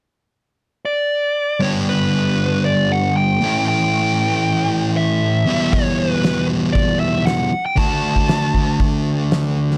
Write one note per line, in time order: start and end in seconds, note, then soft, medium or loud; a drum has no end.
0.85 1.62 D5 medium
1.60 3.39 G2 medium
1.60 3.40 D3 medium
1.60 3.42 G3 medium
1.60 3.41 B3 medium
1.60 3.41 D4 medium
1.60 3.44 G4 medium
1.60 1.69 C#5 medium
1.89 2.65 B4 medium
2.65 2.92 D5 medium
2.92 3.16 F#5 medium
3.17 3.64 G5 loud
3.41 5.45 A2 medium
3.41 5.46 E3 medium
3.41 5.47 A3 medium
3.41 5.47 C#4 medium
3.45 5.47 E4 medium
3.68 4.92 G5 medium
4.97 5.73 E5 medium
5.46 7.50 E2 medium
5.46 7.51 B2 medium
5.46 7.51 E3 medium
5.46 7.51 G3 medium
5.46 7.52 B3 medium
5.50 7.52 E4 medium
5.73 6.00 C#5 medium
5.73 kick loud
5.73 open hi-hat soft
5.98 6.46 B4 medium
6.24 snare loud
6.24 open hi-hat soft
6.73 7.00 D5 medium
6.73 kick loud
6.73 open hi-hat soft
7.00 7.24 E5 medium
7.26 7.65 F#5 medium
7.26 snare loud
7.26 open hi-hat medium
7.66 7.78 G5 medium
7.76 9.78 D3 medium
7.76 9.78 A3 medium
7.76 9.78 D4 medium
7.76 9.78 F#4 medium
7.76 9.57 A5 medium
7.76 kick loud
7.76 open hi-hat soft
8.16 kick medium
8.29 snare loud
8.29 open hi-hat soft
8.54 kick medium
8.80 kick loud
8.80 open hi-hat soft
9.31 snare loud
9.31 open hi-hat soft
9.71 snare soft